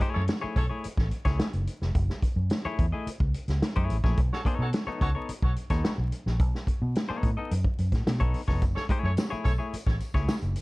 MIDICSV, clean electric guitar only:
0, 0, Header, 1, 2, 480
1, 0, Start_track
1, 0, Tempo, 555453
1, 1687, Time_signature, 4, 2, 24, 8
1, 9174, End_track
2, 0, Start_track
2, 0, Title_t, "Clean electric guitar"
2, 0, Program_c, 0, 27
2, 1, Note_on_c, 0, 57, 73
2, 9, Note_on_c, 0, 64, 70
2, 14, Note_on_c, 0, 68, 85
2, 18, Note_on_c, 0, 73, 84
2, 177, Note_off_c, 0, 57, 0
2, 181, Note_off_c, 0, 64, 0
2, 183, Note_off_c, 0, 68, 0
2, 185, Note_off_c, 0, 73, 0
2, 359, Note_on_c, 0, 73, 68
2, 364, Note_on_c, 0, 68, 79
2, 370, Note_on_c, 0, 64, 68
2, 374, Note_on_c, 0, 57, 65
2, 535, Note_off_c, 0, 73, 0
2, 537, Note_off_c, 0, 68, 0
2, 540, Note_off_c, 0, 64, 0
2, 542, Note_off_c, 0, 57, 0
2, 600, Note_on_c, 0, 73, 57
2, 607, Note_on_c, 0, 68, 50
2, 610, Note_on_c, 0, 64, 43
2, 618, Note_on_c, 0, 57, 38
2, 738, Note_off_c, 0, 73, 0
2, 741, Note_off_c, 0, 68, 0
2, 743, Note_off_c, 0, 64, 0
2, 747, Note_off_c, 0, 57, 0
2, 1080, Note_on_c, 0, 73, 78
2, 1084, Note_on_c, 0, 68, 75
2, 1092, Note_on_c, 0, 64, 70
2, 1099, Note_on_c, 0, 57, 61
2, 1255, Note_off_c, 0, 73, 0
2, 1257, Note_off_c, 0, 68, 0
2, 1261, Note_off_c, 0, 64, 0
2, 1265, Note_off_c, 0, 57, 0
2, 2291, Note_on_c, 0, 73, 79
2, 2295, Note_on_c, 0, 68, 73
2, 2299, Note_on_c, 0, 64, 79
2, 2301, Note_on_c, 0, 57, 68
2, 2461, Note_off_c, 0, 73, 0
2, 2463, Note_off_c, 0, 68, 0
2, 2465, Note_off_c, 0, 64, 0
2, 2466, Note_off_c, 0, 57, 0
2, 2526, Note_on_c, 0, 75, 49
2, 2531, Note_on_c, 0, 68, 51
2, 2537, Note_on_c, 0, 64, 45
2, 2542, Note_on_c, 0, 57, 46
2, 2661, Note_off_c, 0, 75, 0
2, 2663, Note_off_c, 0, 68, 0
2, 2667, Note_off_c, 0, 64, 0
2, 2669, Note_off_c, 0, 57, 0
2, 3249, Note_on_c, 0, 73, 78
2, 3254, Note_on_c, 0, 68, 80
2, 3260, Note_on_c, 0, 64, 82
2, 3265, Note_on_c, 0, 57, 68
2, 3421, Note_off_c, 0, 73, 0
2, 3423, Note_off_c, 0, 68, 0
2, 3426, Note_off_c, 0, 64, 0
2, 3429, Note_off_c, 0, 57, 0
2, 3489, Note_on_c, 0, 73, 62
2, 3493, Note_on_c, 0, 68, 59
2, 3496, Note_on_c, 0, 64, 58
2, 3501, Note_on_c, 0, 57, 53
2, 3622, Note_off_c, 0, 73, 0
2, 3624, Note_off_c, 0, 68, 0
2, 3626, Note_off_c, 0, 64, 0
2, 3629, Note_off_c, 0, 57, 0
2, 3852, Note_on_c, 0, 59, 77
2, 3856, Note_on_c, 0, 63, 78
2, 3861, Note_on_c, 0, 69, 89
2, 3868, Note_on_c, 0, 73, 84
2, 4022, Note_off_c, 0, 59, 0
2, 4024, Note_off_c, 0, 63, 0
2, 4027, Note_off_c, 0, 69, 0
2, 4031, Note_off_c, 0, 73, 0
2, 4208, Note_on_c, 0, 73, 83
2, 4215, Note_on_c, 0, 69, 78
2, 4218, Note_on_c, 0, 63, 79
2, 4224, Note_on_c, 0, 59, 65
2, 4379, Note_off_c, 0, 73, 0
2, 4383, Note_off_c, 0, 69, 0
2, 4385, Note_off_c, 0, 63, 0
2, 4387, Note_off_c, 0, 59, 0
2, 4449, Note_on_c, 0, 73, 60
2, 4454, Note_on_c, 0, 69, 54
2, 4461, Note_on_c, 0, 63, 50
2, 4465, Note_on_c, 0, 59, 48
2, 4583, Note_off_c, 0, 73, 0
2, 4585, Note_off_c, 0, 69, 0
2, 4588, Note_off_c, 0, 63, 0
2, 4590, Note_off_c, 0, 59, 0
2, 4929, Note_on_c, 0, 73, 69
2, 4931, Note_on_c, 0, 69, 64
2, 4937, Note_on_c, 0, 63, 66
2, 4941, Note_on_c, 0, 59, 59
2, 5100, Note_off_c, 0, 73, 0
2, 5101, Note_off_c, 0, 69, 0
2, 5104, Note_off_c, 0, 63, 0
2, 5106, Note_off_c, 0, 59, 0
2, 6124, Note_on_c, 0, 73, 87
2, 6133, Note_on_c, 0, 69, 78
2, 6137, Note_on_c, 0, 63, 73
2, 6142, Note_on_c, 0, 59, 76
2, 6299, Note_off_c, 0, 73, 0
2, 6303, Note_off_c, 0, 69, 0
2, 6305, Note_off_c, 0, 63, 0
2, 6307, Note_off_c, 0, 59, 0
2, 6369, Note_on_c, 0, 75, 53
2, 6373, Note_on_c, 0, 69, 57
2, 6381, Note_on_c, 0, 63, 55
2, 6383, Note_on_c, 0, 59, 44
2, 6503, Note_off_c, 0, 75, 0
2, 6505, Note_off_c, 0, 69, 0
2, 6509, Note_off_c, 0, 63, 0
2, 6510, Note_off_c, 0, 59, 0
2, 7086, Note_on_c, 0, 73, 71
2, 7092, Note_on_c, 0, 69, 71
2, 7101, Note_on_c, 0, 63, 59
2, 7105, Note_on_c, 0, 59, 61
2, 7259, Note_off_c, 0, 73, 0
2, 7262, Note_off_c, 0, 69, 0
2, 7266, Note_off_c, 0, 63, 0
2, 7268, Note_off_c, 0, 59, 0
2, 7324, Note_on_c, 0, 73, 60
2, 7330, Note_on_c, 0, 69, 58
2, 7333, Note_on_c, 0, 63, 54
2, 7342, Note_on_c, 0, 59, 51
2, 7460, Note_off_c, 0, 73, 0
2, 7463, Note_off_c, 0, 69, 0
2, 7465, Note_off_c, 0, 63, 0
2, 7469, Note_off_c, 0, 59, 0
2, 7691, Note_on_c, 0, 57, 84
2, 7696, Note_on_c, 0, 64, 86
2, 7700, Note_on_c, 0, 68, 101
2, 7704, Note_on_c, 0, 73, 101
2, 7862, Note_off_c, 0, 57, 0
2, 7865, Note_off_c, 0, 64, 0
2, 7867, Note_off_c, 0, 68, 0
2, 7869, Note_off_c, 0, 73, 0
2, 8040, Note_on_c, 0, 73, 72
2, 8045, Note_on_c, 0, 68, 80
2, 8052, Note_on_c, 0, 64, 64
2, 8057, Note_on_c, 0, 57, 69
2, 8216, Note_off_c, 0, 73, 0
2, 8218, Note_off_c, 0, 68, 0
2, 8222, Note_off_c, 0, 64, 0
2, 8224, Note_off_c, 0, 57, 0
2, 8282, Note_on_c, 0, 73, 52
2, 8286, Note_on_c, 0, 68, 62
2, 8292, Note_on_c, 0, 64, 50
2, 8295, Note_on_c, 0, 57, 53
2, 8419, Note_off_c, 0, 73, 0
2, 8422, Note_off_c, 0, 68, 0
2, 8425, Note_off_c, 0, 64, 0
2, 8426, Note_off_c, 0, 57, 0
2, 8766, Note_on_c, 0, 73, 74
2, 8771, Note_on_c, 0, 68, 75
2, 8774, Note_on_c, 0, 64, 72
2, 8782, Note_on_c, 0, 57, 65
2, 8939, Note_off_c, 0, 73, 0
2, 8942, Note_off_c, 0, 68, 0
2, 8943, Note_off_c, 0, 64, 0
2, 8947, Note_off_c, 0, 57, 0
2, 9174, End_track
0, 0, End_of_file